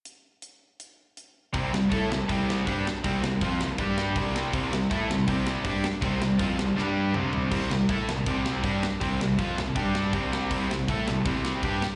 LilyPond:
<<
  \new Staff \with { instrumentName = "Distorted electric guitar" } { \clef bass \time 4/4 \key c \major \tempo 4 = 161 r1 | <c g c'>8 <c g>8 <a e' a'>8 <c g>8 <c g c'>4 <g d' g'>8 r8 | <c g c'>8 <c g>8 <f c' f'>8 <c g>8 <g d' g'>4 <c g c'>4 | <c g c'>8 <c g>8 <a e' a'>8 <c g>8 <c g c'>4 <g d' g'>8 r8 |
<c g c'>8 <c g>8 <f c' f'>8 <c g>8 <g d' g'>4 <c g c'>4 | <c g c'>8 <c g>8 <a e' a'>8 <c g>8 <c g c'>4 <g d' g'>8 r8 | <c g c'>8 <c g>8 <f c' f'>8 <c g>8 <g d' g'>4 <c g c'>4 | <c g c'>8 <c g>8 <a e' a'>8 <c g>8 <c g c'>4 <g d' g'>8 r8 | }
  \new Staff \with { instrumentName = "Overdriven electric guitar" } { \clef bass \time 4/4 \key c \major r1 | <c g c'>8 <c g>8 <a e' a'>8 <c g>8 <c g c'>4 <g d' g'>8 r8 | <c g c'>8 <c g>8 <f c' f'>8 <c g>8 <g d' g'>4 <c g c'>4 | <c g c'>8 <c g>8 <a e' a'>8 <c g>8 <c g c'>4 <g d' g'>8 r8 |
<c g c'>8 <c g>8 <f c' f'>8 <c g>8 <g d' g'>4 <c g c'>4 | <c g c'>8 <c g>8 <a e' a'>8 <c g>8 <c g c'>4 <g d' g'>8 r8 | <c g c'>8 <c g>8 <f c' f'>8 <c g>8 <g d' g'>4 <c g c'>4 | <c g c'>8 <c g>8 <a e' a'>8 <c g>8 <c g c'>4 <g d' g'>8 r8 | }
  \new Staff \with { instrumentName = "Overdriven electric guitar" } { \clef bass \time 4/4 \key c \major r1 | <c g c'>8 <c g>8 <a e' a'>8 <c g>8 <c g c'>4 <g d' g'>8 r8 | <c g c'>8 <c g>8 <f c' f'>8 <c g>8 <g d' g'>4 <c g c'>4 | <c g c'>8 <c g>8 <a e' a'>8 <c g>8 <c g c'>4 <g d' g'>8 r8 |
<c g c'>8 <c g>8 <f c' f'>8 <c g>8 <g d' g'>4 <c g c'>4 | <c g c'>8 <c g>8 <a e' a'>8 <c g>8 <c g c'>4 <g d' g'>8 r8 | <c g c'>8 <c g>8 <f c' f'>8 <c g>8 <g d' g'>4 <c g c'>4 | <c g c'>8 <c g>8 <a e' a'>8 <c g>8 <c g c'>4 <g d' g'>8 r8 | }
  \new Staff \with { instrumentName = "Picked electric bass" } { \clef bass \time 4/4 \key c \major r1 | c,8 c,8 a,8 c,8 c,4 g,8 r8 | c,8 c,8 f,8 c,8 g,4 c,4 | c,8 c,8 a,8 c,8 c,4 g,8 r8 |
c,8 c,8 f,8 c,8 g,4 c,4 | c,8 c,8 a,8 c,8 c,4 g,8 r8 | c,8 c,8 f,8 c,8 g,4 c,4 | c,8 c,8 a,8 c,8 c,4 g,8 r8 | }
  \new DrumStaff \with { instrumentName = "Drums" } \drummode { \time 4/4 hh4 hh4 hh4 hh4 | <hho bd>8 sn8 <hho bd>8 sn8 <hho bd>8 sn8 <hho bd>8 sn8 | <hho bd>8 sn8 <hho bd>8 sn8 <hho bd>8 sn8 <hho bd>8 sn8 | <hho bd>8 sn8 <hho bd>8 sn8 <hho bd>8 sn8 <hho bd>8 sn8 |
<hho bd>8 sn8 <hho bd>8 sn8 sn4 toml8 tomfh8 | <cymc hho bd>8 sn8 <hho bd>8 sn8 <hho bd>8 sn8 <hho bd>8 sn8 | <hho bd>8 sn8 <hho bd>8 sn8 <hho bd>8 sn8 <hho bd>8 sn8 | <hho bd>8 sn8 <hho bd>8 sn8 <hho bd>8 sn8 <hho bd>8 sn8 | }
>>